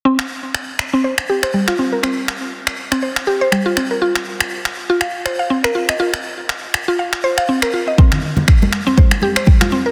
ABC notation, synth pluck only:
X:1
M:4/4
L:1/16
Q:"Swing 16ths" 1/4=121
K:Cm
V:1 name="Synth pluck"
C z6 C c z G c G, F C B | C z6 C c z G c G, F C B | F z6 F f z c f C B F e | F z6 F f z c f C B F e |
C z6 C c z G c G, F C B |]